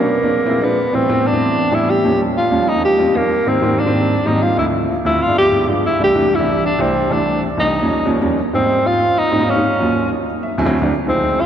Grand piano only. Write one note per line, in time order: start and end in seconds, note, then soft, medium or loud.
0.00 0.14 B2 medium
0.00 0.14 F#3 medium
0.00 0.14 A3 medium
0.00 0.14 C#4 medium
0.00 0.15 D4 medium
0.21 0.38 A#2 medium
0.21 0.39 F3 medium
0.21 0.39 G#3 medium
0.21 0.39 C4 medium
0.21 0.39 D4 medium
0.45 0.57 A#2 medium
0.45 0.57 F3 medium
0.45 0.57 G#3 medium
0.45 0.57 C4 medium
0.45 0.57 E4 medium
0.61 0.77 A#2 medium
0.61 0.77 F3 medium
0.61 0.77 G#3 medium
0.61 0.77 C4 medium
0.61 0.78 D4 medium
0.92 1.04 A2 medium
0.92 1.04 E3 medium
0.92 1.04 G3 medium
0.92 1.04 B3 medium
0.92 1.05 C4 medium
1.09 1.25 A2 medium
1.09 1.26 E3 medium
1.09 1.26 G3 medium
1.09 1.26 B3 medium
1.09 1.26 C4 loud
1.33 1.60 A2 medium
1.33 1.60 E3 medium
1.33 1.61 G3 medium
1.33 1.61 B3 medium
1.33 1.61 C4 medium
1.71 1.94 A2 medium
1.71 1.94 E3 medium
1.71 1.94 G3 medium
1.71 1.94 B3 medium
1.71 1.94 D4 medium
2.03 2.37 D#2 medium
2.03 2.37 F3 medium
2.03 2.37 G3 medium
2.03 2.37 A#3 medium
2.03 2.38 C#4 medium
2.51 2.68 D#2 medium
2.51 2.68 F3 medium
2.51 2.68 G3 medium
2.51 2.68 A#3 medium
2.51 2.68 C#4 medium
2.74 2.91 D#2 medium
2.74 2.92 F3 medium
2.74 2.92 G3 medium
2.74 2.92 A#3 medium
2.74 2.92 C#4 medium
2.98 3.10 D#2 medium
2.98 3.10 F3 medium
2.98 3.10 G3 medium
2.98 3.10 A#3 medium
2.98 3.10 C4 medium
3.14 3.30 D#2 medium
3.14 3.30 F3 medium
3.14 3.30 G3 medium
3.14 3.31 A#3 medium
3.14 3.31 C4 medium
3.46 3.57 G#2 medium
3.46 3.58 D#3 medium
3.46 3.58 G3 medium
3.46 3.58 A#3 medium
3.46 3.58 C4 medium
3.62 3.79 G#2 medium
3.62 3.79 D#3 medium
3.62 3.79 G3 medium
3.62 3.79 A#3 medium
3.62 3.79 C4 medium
3.86 4.14 G#2 medium
3.86 4.14 D#3 medium
3.86 4.14 G3 medium
3.86 4.14 A#3 medium
3.86 4.15 C4 medium
4.26 4.48 G#2 medium
4.26 4.48 D#3 medium
4.26 4.48 G3 medium
4.26 4.48 A#3 medium
4.26 4.49 C4 medium
4.57 4.90 D2 medium
4.57 4.90 F3 medium
4.57 4.91 A3 medium
4.57 4.91 C4 medium
4.57 4.91 E4 medium
5.05 5.21 D2 medium
5.05 5.21 F3 medium
5.05 5.21 A3 medium
5.05 5.21 C4 medium
5.05 5.21 F4 medium
5.27 5.45 G2 medium
5.27 5.45 F3 medium
5.27 5.45 G#3 medium
5.27 5.45 B3 medium
5.27 5.45 D4 medium
5.51 5.63 G2 medium
5.51 5.63 F3 medium
5.51 5.63 G#3 medium
5.51 5.63 B3 medium
5.51 5.64 E4 medium
5.67 5.83 G2 medium
5.67 5.84 F3 medium
5.67 5.84 G#3 medium
5.67 5.84 B3 medium
5.67 5.84 D4 medium
5.99 6.10 C2 medium
5.99 6.10 E3 medium
5.99 6.11 G3 medium
5.99 6.11 A3 medium
5.99 6.11 D4 medium
6.15 6.32 C2 medium
6.15 6.32 E3 medium
6.15 6.32 G3 medium
6.15 6.32 A3 medium
6.15 6.33 D4 medium
6.38 6.67 C2 medium
6.38 6.67 E3 medium
6.38 6.67 G3 medium
6.38 6.67 A3 medium
6.38 6.67 D4 medium
6.78 7.01 C2 medium
6.78 7.01 E3 medium
6.78 7.01 G3 medium
6.78 7.01 A3 medium
6.78 7.01 D4 medium
7.10 7.43 C2 medium
7.10 7.43 E3 medium
7.10 7.44 G3 medium
7.10 7.44 A3 medium
7.10 7.44 D4 medium
7.57 7.74 C2 medium
7.57 7.74 E3 medium
7.57 7.74 G3 medium
7.57 7.74 A3 medium
7.57 7.74 D4 medium
7.81 7.98 D#2 medium
7.81 7.99 F3 medium
7.81 7.99 G3 medium
7.81 7.99 A#3 medium
7.81 7.99 C#4 medium
8.05 8.17 D#2 medium
8.05 8.17 F3 medium
8.05 8.17 G3 medium
8.05 8.17 A#3 medium
8.05 8.17 C#4 medium
8.21 8.37 D#2 medium
8.21 8.37 F3 medium
8.21 8.37 G3 medium
8.21 8.37 A#3 medium
8.21 8.37 C#4 medium
8.53 8.98 G#2 medium
8.53 8.98 G3 medium
8.53 8.98 A#3 medium
8.53 8.98 C4 medium
8.53 8.98 D#4 medium
9.32 9.37 G#2 medium
9.32 9.38 G3 medium
9.32 9.38 A#3 medium
9.32 9.38 C4 medium
9.32 9.38 D#4 medium
9.40 9.51 G#2 medium
9.40 9.51 G3 medium
9.40 9.51 A#3 medium
9.40 9.52 C4 medium
9.40 9.52 D#4 medium
9.56 9.64 G#2 medium
9.56 9.64 G3 medium
9.56 9.64 A#3 medium
9.56 9.65 C4 medium
9.56 9.65 D#4 medium
9.80 10.24 D#2 medium
9.80 10.24 F#3 medium
9.80 10.24 A#3 medium
9.80 10.24 C#4 medium
9.80 10.25 F4 medium
10.43 10.58 E5 medium
10.58 10.64 D2 medium
10.58 10.64 F#3 medium
10.58 10.64 A3 medium
10.58 10.65 C4 medium
10.58 10.65 E4 loud
10.58 10.88 G#5 medium
10.65 10.77 D2 medium
10.65 10.77 F#3 medium
10.65 10.77 A3 medium
10.65 10.78 C4 medium
10.65 10.78 E4 loud
10.81 10.90 D2 medium
10.81 10.90 F#3 medium
10.81 10.90 A3 medium
10.81 10.91 C4 medium
10.81 10.91 D4 medium
11.06 11.46 C#2 medium
11.06 11.46 F3 medium
11.06 11.46 G#3 medium
11.06 11.46 C4 medium
11.06 11.46 D#4 medium